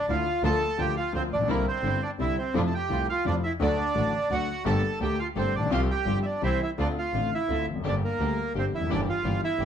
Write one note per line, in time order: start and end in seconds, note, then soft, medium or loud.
0.00 0.12 D5 loud
0.09 0.23 D2 medium
0.09 0.24 D2 medium
0.09 0.23 D3 medium
0.09 0.23 F3 soft
0.09 0.24 A3 soft
0.09 0.24 D4 soft
0.09 0.24 E4 medium
0.09 0.43 F4 medium
0.09 0.42 F5 medium
0.43 0.58 D2 medium
0.43 0.58 D3 medium
0.43 0.58 F3 medium
0.43 0.58 A#3 medium
0.43 0.59 A#3 medium
0.43 0.58 D4 medium
0.43 0.58 F4 medium
0.43 0.59 F4 medium
0.43 0.78 A4 medium
0.43 0.80 A5 loud
0.78 0.93 D2 medium
0.78 0.93 D3 medium
0.78 0.93 F3 soft
0.78 0.93 A#3 soft
0.78 0.93 D4 soft
0.78 0.93 F4 soft
0.78 0.93 F4 medium
0.78 0.96 G4 medium
0.78 0.95 G5 medium
0.97 1.13 F4 medium
0.97 1.13 F5 medium
1.13 1.28 D2 medium
1.13 1.28 D3 medium
1.13 1.28 F3 soft
1.13 1.28 A#3 soft
1.13 1.23 C4 medium
1.13 1.28 D4 soft
1.13 1.28 F4 medium
1.13 1.22 C5 medium
1.31 1.39 A1 soft
1.31 1.48 A#1 medium
1.31 1.49 D4 medium
1.31 1.48 D5 medium
1.39 1.44 A#1 medium
1.39 1.48 B1 medium
1.47 1.63 C2 medium
1.47 1.63 C3 medium
1.47 1.63 D3 medium
1.47 1.63 G3 medium
1.47 1.66 A#3 medium
1.47 1.63 C4 medium
1.47 1.63 D4 medium
1.47 1.63 E4 medium
1.47 1.66 A#4 medium
1.68 2.01 C4 medium
1.68 2.04 C5 medium
1.83 1.98 G1 medium
1.83 1.99 G1 medium
1.83 1.98 G2 soft
1.83 1.98 D3 soft
1.83 1.98 G3 soft
1.83 1.98 C4 soft
1.83 1.99 C4 soft
1.83 1.99 D4 soft
1.83 1.99 E4 soft
2.02 2.11 D4 medium
2.02 2.10 D5 medium
2.19 2.34 C2 medium
2.19 2.34 C3 medium
2.19 2.34 D3 soft
2.19 2.34 G3 soft
2.19 2.34 C4 soft
2.19 2.34 D4 soft
2.19 2.34 E4 medium
2.19 2.34 E4 soft
2.19 2.37 E5 medium
2.23 2.38 E4 medium
2.38 2.55 C4 medium
2.38 2.54 C5 medium
2.54 2.70 F2 medium
2.54 2.69 C3 medium
2.54 2.70 F3 medium
2.54 2.70 A3 medium
2.54 2.62 D4 medium
2.54 2.70 E4 medium
2.54 2.70 F4 medium
2.54 2.60 D5 medium
2.67 2.74 A5 medium
2.74 3.07 G4 medium
2.74 3.07 G5 medium
2.90 3.05 C2 medium
2.90 3.06 C2 medium
2.90 3.05 C3 medium
2.90 3.05 F3 soft
2.90 3.05 A3 soft
2.90 3.05 E4 medium
2.90 3.05 E4 soft
2.90 3.06 F4 medium
3.09 3.26 F4 medium
3.09 3.25 F5 medium
3.25 3.40 F2 medium
3.25 3.41 F2 medium
3.25 3.40 C3 soft
3.25 3.40 F3 medium
3.25 3.40 A3 soft
3.25 3.36 D4 medium
3.25 3.40 E4 soft
3.25 3.41 E4 medium
3.25 3.40 F4 soft
3.25 3.34 D5 medium
3.44 3.53 E4 medium
3.44 3.51 E5 medium
3.60 3.75 D2 medium
3.60 3.75 D3 medium
3.60 3.75 F#3 medium
3.60 3.75 A3 medium
3.60 3.76 A3 medium
3.60 3.76 D4 medium
3.60 3.75 F#4 medium
3.60 3.76 F#4 medium
3.60 4.34 D5 medium
3.64 4.29 D4 medium
3.95 4.10 A1 medium
3.95 4.10 A2 medium
3.95 4.10 D3 soft
3.95 4.10 F#3 soft
3.95 4.10 A3 soft
3.95 4.11 A3 soft
3.95 4.11 D4 soft
3.95 4.10 F#4 medium
3.95 4.11 F#4 medium
4.30 4.45 D2 medium
4.30 4.46 D2 medium
4.30 4.45 D3 medium
4.30 4.45 F#3 soft
4.30 4.46 A3 soft
4.30 4.45 D4 soft
4.30 4.46 F#4 medium
4.30 4.65 F#4 medium
4.30 4.64 F#5 medium
4.65 4.80 G1 medium
4.65 4.80 G1 loud
4.65 4.80 G2 medium
4.65 4.80 D3 medium
4.65 4.80 A3 medium
4.65 4.80 A#3 medium
4.65 4.80 G4 medium
4.65 4.81 A4 medium
4.65 5.00 A4 medium
4.65 4.99 A5 medium
5.00 5.15 D2 medium
5.00 5.15 D3 medium
5.00 5.15 A3 soft
5.00 5.15 A#3 soft
5.00 5.15 G4 soft
5.00 5.15 G4 medium
5.00 5.19 G4 medium
5.00 5.15 A4 medium
5.00 5.20 G5 medium
5.19 5.28 F4 medium
5.19 5.27 F5 medium
5.35 5.51 G1 medium
5.35 5.51 G2 medium
5.35 5.51 D3 medium
5.35 5.51 A3 soft
5.35 5.50 A#3 medium
5.35 5.51 A#3 soft
5.35 5.51 G4 soft
5.35 5.51 G4 medium
5.35 5.51 A4 medium
5.35 5.55 C5 medium
5.39 5.54 C4 medium
5.54 5.70 A#1 medium
5.54 5.72 D4 medium
5.54 5.71 D5 medium
5.58 5.63 A1 medium
5.58 5.67 A#1 medium
5.66 5.71 B1 medium
5.71 5.86 C2 medium
5.71 5.86 C3 medium
5.71 5.86 F3 medium
5.71 5.86 G3 medium
5.71 5.86 C4 medium
5.71 5.86 F4 medium
5.71 5.82 F4 medium
5.71 5.86 G4 medium
5.71 5.81 F5 medium
5.91 6.19 G4 medium
5.91 6.19 G5 medium
6.06 6.21 G1 medium
6.06 6.21 G2 medium
6.06 6.21 F3 soft
6.06 6.21 G3 soft
6.06 6.21 C4 soft
6.06 6.21 F4 soft
6.06 6.22 G4 medium
6.23 6.42 D5 medium
6.23 6.26 E5 medium
6.27 6.42 D4 medium
6.42 6.57 C2 medium
6.42 6.58 C2 medium
6.42 6.58 C3 medium
6.42 6.57 E3 soft
6.42 6.57 G3 soft
6.42 6.58 C4 soft
6.42 6.61 C4 medium
6.42 6.58 E4 soft
6.42 6.62 E4 medium
6.42 6.58 G4 medium
6.42 6.58 G4 soft
6.42 6.60 C5 medium
6.42 6.61 E5 medium
6.63 6.71 E4 medium
6.63 6.70 E5 medium
6.78 6.93 D2 medium
6.78 6.94 D2 medium
6.78 6.93 D3 medium
6.78 6.93 A3 medium
6.78 6.93 C4 medium
6.78 6.94 C4 medium
6.78 6.94 D4 medium
6.78 6.88 D4 medium
6.78 6.93 F4 medium
6.78 6.94 F4 medium
6.78 6.88 D5 medium
6.98 7.30 F4 medium
6.98 7.34 F5 medium
7.14 7.29 A1 medium
7.14 7.29 A1 soft
7.14 7.29 A2 soft
7.14 7.29 D3 soft
7.14 7.29 A3 soft
7.14 7.29 C4 soft
7.14 7.29 D4 soft
7.14 7.29 F4 soft
7.34 7.66 E4 medium
7.34 7.66 E5 medium
7.49 7.64 D2 medium
7.49 7.64 D3 medium
7.49 7.64 A3 soft
7.49 7.64 C4 soft
7.49 7.64 D4 soft
7.49 7.64 F4 soft
7.67 7.83 F1 soft
7.67 7.76 E2 soft
7.75 7.80 F2 medium
7.80 7.85 F#2 medium
7.80 7.99 A#3 medium
7.84 7.99 G1 medium
7.84 8.00 G1 medium
7.84 8.00 G2 medium
7.84 7.99 D3 medium
7.84 8.00 G3 medium
7.84 8.00 A#3 medium
7.84 7.99 D4 medium
7.84 7.95 D4 medium
7.84 7.99 G4 medium
7.84 8.00 G4 medium
7.84 7.95 D5 medium
8.05 8.53 A#3 medium
8.05 8.53 A#4 medium
8.20 8.35 D2 medium
8.20 8.35 D3 medium
8.20 8.35 G3 soft
8.20 8.35 A#3 soft
8.20 8.35 D4 soft
8.20 8.35 G4 soft
8.55 8.70 G1 medium
8.55 8.70 G1 soft
8.55 8.70 G2 soft
8.55 8.70 D3 soft
8.55 8.70 G3 soft
8.55 8.70 A#3 soft
8.55 8.65 C4 medium
8.55 8.70 D4 soft
8.55 8.70 G4 soft
8.59 8.66 C5 medium
8.73 8.89 F1 soft
8.73 8.81 E2 soft
8.73 8.90 E4 medium
8.73 8.90 E5 medium
8.81 8.85 F2 medium
8.86 9.04 G1 medium
8.86 8.90 F#2 medium
8.86 9.04 E3 medium
8.86 9.04 A#3 medium
8.86 9.04 E4 medium
8.90 9.05 G1 medium
8.90 9.05 G2 medium
8.90 9.05 G3 medium
8.90 9.05 A#3 medium
8.90 9.00 D4 medium
8.90 9.05 G4 medium
8.90 9.01 D5 medium
9.09 9.41 F4 medium
9.09 9.41 F5 medium
9.24 9.39 G1 medium
9.24 9.39 G2 medium
9.24 9.39 E3 soft
9.24 9.39 G3 soft
9.24 9.39 A#3 soft
9.24 9.39 E4 soft
9.24 9.39 G4 soft
9.24 9.40 G4 soft
9.44 9.65 E4 medium
9.44 9.65 E5 medium
9.59 9.65 G1 medium
9.59 9.65 G2 medium
9.59 9.65 E3 soft
9.59 9.65 G3 soft
9.59 9.65 A#3 soft
9.59 9.65 E4 soft
9.59 9.65 G4 soft